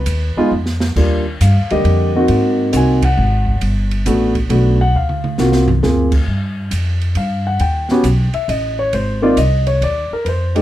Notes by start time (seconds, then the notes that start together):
Already playing: B4
0.06 D#2, hi-hat pedal, ride
0.36 G#3 B3 D#4 F4, muted upright bass stroke
0.51 F2
0.66 snare
0.80 snare
0.96 D#2 G3 A#3 D4 F4, kick, crash
1.40 G2 F5, kick, hi-hat pedal, ride
1.55 D#2
1.70 D2 D3 G3 A#3 G4 D#5, ride
1.84 F2, ride
2.16 A#3 C4 D#4 F#4
2.28 G#2, kick, ride
2.72 C2 A#3 C4 D#4 F#4, kick, hi-hat pedal, ride
2.76 G#5
3.02 F#5, kick, ride
3.17 G#1
3.47 kick
3.61 G1, kick, ride
3.91 ride
4.06 A1 A3 B3 D4 F#4, kick, hi-hat pedal, ride
4.35 kick, ride
4.49 B1 A3 B3 D4 F#4, ride
4.81 F#5
4.94 D2 F5
5.09 mid tom
5.24 mid tom
5.38 C2 A#3 C4 F4 F#4, snare, hi-hat pedal
5.52 snare
5.68 floor tom
5.83 D2 A#3 C4 F4 G#4, snare
6.12 kick, crash
6.27 G2, kick
6.71 F2, kick, hi-hat pedal, ride
7.01 ride
7.15 G2 F5, kick, ride
7.47 F#5
7.59 D#2 G5, kick, ride
7.89 B3 C#4 F#4 G4, snare
8.03 B1, kick, hi-hat pedal, ride
8.33 E5, muted upright bass stroke, ride
8.48 A1 D#5, kick, ride
8.79 C#5
8.93 G#1 C5, kick, ride
9.22 A#3 C4 D#4 F4 D5
9.37 C2 D#5, kick, hi-hat pedal, ride
9.67 C#5, ride
9.81 D#2 D5, kick, ride
10.11 A#4, muted upright bass stroke
10.24 F2 B4, kick, ride
10.29 C5
10.55 A3 D4 D#4 G4, ride